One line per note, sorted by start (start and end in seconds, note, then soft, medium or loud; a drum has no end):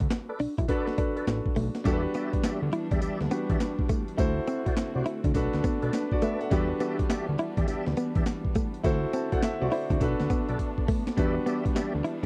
0.00 0.08 D2 medium
0.00 0.64 D4 medium
0.00 0.65 F#4 medium
0.00 0.65 A4 medium
0.00 0.66 B4 medium
0.00 muted clean electric guitar stroke soft
0.00 kick medium
0.00 closed hi-hat medium
0.10 muted clean electric guitar stroke soft
0.10 snare loud
0.10 clap medium
0.10 closed hi-hat medium
0.29 0.39 A4 medium
0.29 0.39 B4 medium
0.29 0.39 D5 medium
0.40 0.48 B1 soft
0.40 0.54 D4 medium
0.40 open hi-hat medium
0.58 0.66 B1 medium
0.58 0.66 E4 medium
0.58 kick loud
0.58 closed hi-hat medium
0.68 0.96 D4 medium
0.68 0.96 F#4 medium
0.68 0.86 A4 medium
0.68 0.97 A4 medium
0.68 0.86 B4 medium
0.68 0.97 B4 medium
0.68 0.87 D5 medium
0.68 kick medium
0.68 closed hi-hat medium
0.87 snare medium
0.97 1.83 D4 medium
0.97 1.12 D4 medium
0.97 1.83 F#4 soft
0.97 1.85 A4 medium
0.97 1.86 B4 medium
0.97 kick medium
0.97 closed hi-hat medium
1.16 1.26 A4 medium
1.16 1.26 B4 medium
1.16 1.27 D5 medium
1.16 closed hi-hat soft
1.27 1.41 A1 loud
1.27 snare medium
1.27 clap medium
1.27 closed hi-hat medium
1.46 kick loud
1.56 1.70 B1 loud
1.56 1.70 A3 medium
1.56 open hi-hat medium
1.75 snare medium
1.75 closed hi-hat medium
1.84 2.07 E2 loud
1.84 4.16 E3 medium
1.84 4.16 G3 medium
1.84 1.99 G3 medium
1.84 4.16 B3 medium
1.84 3.27 D4 medium
1.84 3.28 F#4 medium
1.84 2.03 G4 medium
1.84 3.28 G4 medium
1.84 1.94 A4 medium
1.84 2.03 D5 medium
1.84 2.03 E5 medium
1.84 kick loud
1.84 closed hi-hat medium
1.84 tambourine medium
1.93 3.30 B4 medium
2.14 2.29 B3 medium
2.14 2.32 G4 medium
2.14 2.32 D5 medium
2.14 2.32 E5 medium
2.14 closed hi-hat medium
2.14 tambourine medium
2.33 2.38 D2 medium
2.33 muted clean electric guitar stroke soft
2.33 kick medium
2.33 closed hi-hat medium
2.43 2.61 G4 medium
2.43 2.61 D5 medium
2.43 2.61 E5 medium
2.43 muted clean electric guitar stroke soft
2.43 snare loud
2.43 clap medium
2.43 closed hi-hat medium
2.43 tambourine loud
2.62 2.70 D2 loud
2.73 2.87 E4 medium
2.73 closed hi-hat medium
2.91 2.99 E2 medium
2.91 2.99 D4 medium
2.91 3.00 G4 medium
2.91 3.01 D5 medium
2.91 3.01 E5 medium
2.91 kick loud
2.91 closed hi-hat medium
3.02 3.10 D2 soft
3.02 3.19 G4 medium
3.02 3.20 D5 medium
3.02 3.20 E5 medium
3.02 closed hi-hat medium
3.02 tambourine medium
3.21 3.29 D2 loud
3.21 snare medium
3.31 3.45 B3 medium
3.31 4.18 D4 medium
3.31 4.17 F#4 medium
3.31 4.18 G4 medium
3.31 4.19 B4 medium
3.31 closed hi-hat medium
3.31 tambourine medium
3.49 3.57 E2 medium
3.49 3.59 G4 medium
3.49 3.60 D5 medium
3.49 3.60 E5 medium
3.49 kick loud
3.49 closed hi-hat soft
3.60 snare loud
3.60 clap medium
3.60 closed hi-hat medium
3.60 tambourine medium
3.79 kick loud
3.89 4.03 A3 medium
3.89 kick loud
3.89 closed hi-hat medium
3.89 tambourine medium
4.08 closed hi-hat medium
4.17 4.40 D2 loud
4.17 5.34 D3 medium
4.17 4.32 A3 medium
4.17 6.49 A3 medium
4.17 5.34 C4 medium
4.17 5.32 E4 medium
4.17 5.32 F#4 medium
4.17 5.34 F#4 medium
4.17 5.33 A4 medium
4.17 5.33 C5 medium
4.17 kick loud
4.17 closed hi-hat medium
4.17 tambourine medium
4.47 4.61 C4 medium
4.47 closed hi-hat medium
4.47 tambourine medium
4.66 4.71 C2 soft
4.66 4.76 F#4 medium
4.66 4.76 C5 medium
4.66 4.76 D5 medium
4.66 muted clean electric guitar stroke soft
4.66 kick medium
4.66 closed hi-hat medium
4.77 muted clean electric guitar stroke soft
4.77 snare loud
4.77 clap medium
4.77 closed hi-hat medium
4.77 tambourine medium
4.95 5.03 C2 medium
4.95 5.05 F#4 medium
4.95 5.05 C5 medium
4.95 5.05 D5 medium
5.06 5.20 E4 medium
5.06 closed hi-hat medium
5.24 5.32 D2 medium
5.24 5.32 D4 medium
5.24 kick loud
5.24 closed hi-hat medium
5.34 5.49 B1 loud
5.34 8.81 B3 medium
5.34 5.92 D4 medium
5.34 6.50 D4 medium
5.34 5.92 F#4 medium
5.34 5.92 A4 medium
5.34 5.92 B4 medium
5.34 kick medium
5.34 closed hi-hat loud
5.34 tambourine medium
5.53 5.62 D2 loud
5.53 snare medium
5.64 5.78 B3 medium
5.64 kick medium
5.64 closed hi-hat medium
5.64 tambourine medium
5.82 5.91 B1 medium
5.82 5.92 A4 medium
5.82 5.92 B4 medium
5.82 5.93 D5 medium
5.82 closed hi-hat soft
5.93 6.11 D4 medium
5.93 6.11 B4 medium
5.93 snare medium
5.93 clap medium
5.93 closed hi-hat medium
5.93 tambourine medium
6.12 6.22 F#4 medium
6.12 6.22 D5 medium
6.12 kick loud
6.22 6.36 A3 medium
6.22 6.40 A4 medium
6.22 6.40 B4 medium
6.22 6.40 D5 medium
6.22 6.40 E5 medium
6.22 closed hi-hat medium
6.22 tambourine medium
6.41 6.69 A4 medium
6.41 6.69 F#5 medium
6.41 closed hi-hat medium
6.50 6.73 E2 loud
6.50 8.82 E3 medium
6.50 8.82 G3 medium
6.50 6.65 G3 medium
6.50 8.80 D4 medium
6.50 8.82 D4 medium
6.50 8.80 F#4 medium
6.50 6.69 G4 medium
6.50 8.81 G4 medium
6.50 8.81 B4 medium
6.50 6.69 D5 medium
6.50 6.69 E5 medium
6.50 kick loud
6.50 closed hi-hat medium
6.50 tambourine medium
6.80 6.94 B3 medium
6.80 6.98 G4 medium
6.80 6.98 D5 medium
6.80 6.98 E5 medium
6.80 closed hi-hat medium
6.80 tambourine medium
6.99 7.04 D2 medium
6.99 muted clean electric guitar stroke soft
6.99 kick medium
6.99 closed hi-hat medium
7.09 7.27 G4 medium
7.09 7.27 D5 medium
7.09 7.27 E5 medium
7.09 muted clean electric guitar stroke soft
7.09 snare loud
7.09 clap medium
7.09 closed hi-hat medium
7.09 tambourine medium
7.29 7.36 D2 medium
7.38 7.53 E4 medium
7.38 closed hi-hat medium
7.57 7.65 E2 medium
7.57 7.65 D4 medium
7.57 7.67 G4 medium
7.57 7.67 D5 medium
7.57 7.67 E5 medium
7.57 kick loud
7.57 closed hi-hat medium
7.68 7.76 D2 soft
7.68 7.85 G4 medium
7.68 7.86 D5 medium
7.68 7.86 E5 medium
7.68 closed hi-hat medium
7.68 tambourine medium
7.86 7.95 D2 medium
7.86 snare medium
7.97 8.11 B3 medium
7.97 closed hi-hat medium
7.97 tambourine medium
8.15 8.24 E2 medium
8.15 8.25 G4 medium
8.15 8.26 D5 medium
8.15 8.26 E5 medium
8.15 kick loud
8.15 closed hi-hat soft
8.26 snare loud
8.26 clap medium
8.26 closed hi-hat medium
8.26 tambourine medium
8.45 kick medium
8.55 8.69 A3 medium
8.55 kick loud
8.55 closed hi-hat medium
8.55 tambourine medium
8.74 closed hi-hat medium
8.84 9.06 D2 loud
8.84 10.00 D3 medium
8.84 8.98 A3 medium
8.84 11.15 A3 medium
8.84 10.00 C4 medium
8.84 9.12 E4 medium
8.84 9.13 F#4 medium
8.84 10.00 F#4 medium
8.84 9.13 A4 medium
8.84 9.13 C5 medium
8.84 kick loud
8.84 closed hi-hat medium
8.84 tambourine medium
9.13 9.27 C4 medium
9.13 9.32 C5 medium
9.13 9.31 A5 medium
9.13 closed hi-hat medium
9.13 tambourine medium
9.32 9.37 C2 soft
9.32 9.42 F#4 medium
9.32 9.43 A4 medium
9.32 9.42 C5 medium
9.32 9.42 D5 medium
9.32 9.42 F#5 medium
9.32 muted clean electric guitar stroke soft
9.32 kick medium
9.32 closed hi-hat medium
9.43 9.61 E5 medium
9.43 muted clean electric guitar stroke soft
9.43 snare loud
9.43 clap medium
9.43 closed hi-hat medium
9.43 tambourine medium
9.61 9.69 C2 medium
9.61 9.71 F#4 medium
9.61 9.72 F#4 medium
9.61 9.71 C5 medium
9.61 9.71 D5 medium
9.72 9.86 E4 medium
9.72 9.90 E4 medium
9.72 9.90 C5 medium
9.72 open hi-hat medium
9.90 9.98 D2 loud
9.90 9.98 D4 medium
9.90 9.99 F#4 medium
9.90 10.18 D5 medium
9.90 kick loud
9.90 closed hi-hat medium
10.00 10.15 B1 loud
10.00 12.26 B3 medium
10.00 11.15 D4 medium
10.00 11.16 D4 medium
10.00 11.15 F#4 medium
10.00 11.15 A4 medium
10.00 11.16 B4 medium
10.00 kick medium
10.00 closed hi-hat medium
10.00 tambourine medium
10.20 10.28 D2 medium
10.20 snare medium
10.30 10.44 B3 medium
10.30 kick loud
10.30 closed hi-hat medium
10.30 tambourine medium
10.48 10.57 B1 medium
10.48 10.58 A4 medium
10.48 10.59 B4 medium
10.48 10.59 D5 medium
10.48 closed hi-hat soft
10.59 kick medium
10.59 closed hi-hat medium
10.78 kick medium
10.88 11.02 A3 medium
10.88 kick loud
10.88 open hi-hat medium
11.07 snare loud
11.07 closed hi-hat medium
11.17 11.39 E2 loud
11.17 12.26 E3 medium
11.17 11.31 G3 medium
11.17 12.26 G3 medium
11.17 12.26 D4 medium
11.17 12.26 F#4 medium
11.17 11.35 G4 medium
11.17 12.26 G4 medium
11.17 12.26 B4 medium
11.17 11.35 D5 medium
11.17 11.35 E5 loud
11.17 kick loud
11.17 closed hi-hat medium
11.17 tambourine medium
11.46 11.60 B3 medium
11.46 11.64 G4 medium
11.46 11.64 D5 medium
11.46 11.64 E5 medium
11.46 closed hi-hat medium
11.46 tambourine medium
11.65 11.70 D2 medium
11.65 muted clean electric guitar stroke soft
11.65 kick medium
11.65 closed hi-hat medium
11.75 11.93 G4 medium
11.75 11.93 D5 medium
11.75 11.93 E5 medium
11.75 muted clean electric guitar stroke soft
11.75 snare loud
11.75 clap medium
11.75 closed hi-hat medium
11.75 tambourine medium
11.95 12.02 D2 medium
12.04 12.18 E4 medium
12.04 closed hi-hat medium